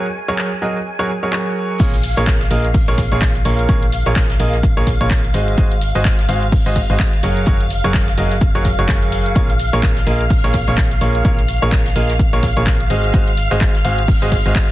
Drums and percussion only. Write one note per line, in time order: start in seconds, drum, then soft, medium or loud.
0.38 clap loud
1.33 clap loud
1.79 kick loud
1.79 closed hi-hat medium
1.79 crash loud
1.79 shaker loud
1.94 closed hi-hat soft
2.03 open hi-hat loud
2.03 shaker medium
2.17 snare soft
2.17 closed hi-hat soft
2.27 kick loud
2.27 snare loud
2.27 clap loud
2.27 closed hi-hat medium
2.27 shaker medium
2.40 snare soft
2.40 closed hi-hat soft
2.51 open hi-hat medium
2.51 shaker medium
2.64 closed hi-hat soft
2.74 kick loud
2.74 closed hi-hat medium
2.74 open hi-hat medium
2.88 closed hi-hat soft
2.98 kick medium
2.98 open hi-hat loud
2.98 shaker medium
3.12 closed hi-hat soft
3.21 kick loud
3.21 snare loud
3.21 clap loud
3.21 closed hi-hat medium
3.21 shaker medium
3.35 closed hi-hat soft
3.45 open hi-hat medium
3.45 shaker medium
3.59 closed hi-hat soft
3.69 kick loud
3.69 closed hi-hat medium
3.69 shaker medium
3.83 closed hi-hat soft
3.92 open hi-hat loud
3.92 shaker medium
4.06 closed hi-hat soft
4.16 kick loud
4.16 snare loud
4.16 clap loud
4.16 closed hi-hat medium
4.16 shaker medium
4.30 snare medium
4.30 closed hi-hat soft
4.40 open hi-hat medium
4.40 shaker medium
4.53 snare soft
4.53 closed hi-hat soft
4.63 kick loud
4.63 closed hi-hat medium
4.63 shaker medium
4.77 closed hi-hat soft
4.87 kick medium
4.87 open hi-hat loud
4.87 shaker medium
5.01 closed hi-hat soft
5.10 kick loud
5.10 snare loud
5.10 clap loud
5.10 closed hi-hat medium
5.10 shaker medium
5.24 closed hi-hat soft
5.33 open hi-hat loud
5.33 shaker medium
5.48 closed hi-hat soft
5.58 kick loud
5.58 closed hi-hat medium
5.58 shaker medium
5.72 closed hi-hat soft
5.81 open hi-hat loud
5.81 shaker medium
5.95 snare soft
5.95 closed hi-hat soft
6.05 kick loud
6.05 snare loud
6.05 clap loud
6.05 closed hi-hat medium
6.05 shaker medium
6.19 snare soft
6.19 closed hi-hat soft
6.29 open hi-hat loud
6.29 shaker medium
6.42 closed hi-hat soft
6.52 kick loud
6.52 closed hi-hat medium
6.52 open hi-hat medium
6.66 closed hi-hat soft
6.75 kick medium
6.75 open hi-hat loud
6.75 shaker medium
6.90 closed hi-hat soft
6.99 kick loud
6.99 snare loud
6.99 clap loud
6.99 closed hi-hat medium
6.99 shaker medium
7.13 closed hi-hat soft
7.23 open hi-hat medium
7.23 shaker medium
7.37 closed hi-hat soft
7.46 kick loud
7.46 closed hi-hat medium
7.46 shaker medium
7.61 closed hi-hat soft
7.70 open hi-hat loud
7.70 shaker medium
7.84 closed hi-hat soft
7.94 kick loud
7.94 snare loud
7.94 clap loud
7.94 closed hi-hat medium
7.94 shaker medium
8.08 snare medium
8.08 closed hi-hat soft
8.17 open hi-hat medium
8.17 shaker medium
8.31 snare soft
8.31 closed hi-hat soft
8.41 kick loud
8.41 closed hi-hat medium
8.41 shaker medium
8.55 closed hi-hat soft
8.65 kick medium
8.65 open hi-hat loud
8.65 shaker medium
8.79 closed hi-hat soft
8.88 kick loud
8.88 snare loud
8.88 clap loud
8.88 closed hi-hat medium
8.88 shaker medium
9.02 closed hi-hat soft
9.12 open hi-hat loud
9.26 closed hi-hat soft
9.35 kick loud
9.35 closed hi-hat medium
9.35 shaker medium
9.50 closed hi-hat soft
9.59 open hi-hat loud
9.59 shaker medium
9.73 snare soft
9.73 closed hi-hat soft
9.83 kick loud
9.83 snare loud
9.83 clap loud
9.83 closed hi-hat medium
9.83 shaker medium
9.97 snare soft
9.97 closed hi-hat soft
10.06 open hi-hat medium
10.06 shaker medium
10.21 closed hi-hat soft
10.30 kick loud
10.30 closed hi-hat medium
10.30 open hi-hat medium
10.44 closed hi-hat soft
10.54 kick medium
10.54 open hi-hat loud
10.54 shaker medium
10.68 closed hi-hat soft
10.77 kick loud
10.77 snare loud
10.77 clap loud
10.77 closed hi-hat medium
10.77 shaker medium
10.91 closed hi-hat soft
11.01 open hi-hat medium
11.01 shaker medium
11.15 closed hi-hat soft
11.25 kick loud
11.25 closed hi-hat medium
11.25 shaker medium
11.39 closed hi-hat soft
11.48 open hi-hat loud
11.48 shaker medium
11.62 closed hi-hat soft
11.72 kick loud
11.72 snare loud
11.72 clap loud
11.72 closed hi-hat medium
11.72 shaker medium
11.86 snare medium
11.86 closed hi-hat soft
11.96 open hi-hat medium
11.96 shaker medium
12.09 snare soft
12.09 closed hi-hat soft
12.19 kick loud
12.19 closed hi-hat medium
12.19 shaker medium
12.33 closed hi-hat soft
12.43 kick medium
12.43 open hi-hat loud
12.43 shaker medium
12.57 closed hi-hat soft
12.66 kick loud
12.66 snare loud
12.66 clap loud
12.66 closed hi-hat medium
12.66 shaker medium
12.80 closed hi-hat soft
12.90 open hi-hat medium
12.90 shaker medium
13.04 closed hi-hat soft
13.14 kick loud
13.14 closed hi-hat medium
13.14 shaker medium
13.28 closed hi-hat soft
13.37 open hi-hat loud
13.37 shaker medium
13.50 snare soft
13.50 closed hi-hat soft
13.61 kick loud
13.61 snare loud
13.61 clap loud
13.61 closed hi-hat medium
13.61 shaker medium
13.75 snare soft
13.75 closed hi-hat soft
13.85 open hi-hat medium
13.85 shaker medium
13.98 closed hi-hat soft
14.08 kick loud
14.08 closed hi-hat medium
14.08 open hi-hat medium
14.22 closed hi-hat soft
14.32 kick medium
14.32 open hi-hat loud
14.32 shaker medium
14.46 closed hi-hat soft
14.55 kick loud
14.55 snare loud
14.55 clap loud
14.55 closed hi-hat medium
14.55 shaker medium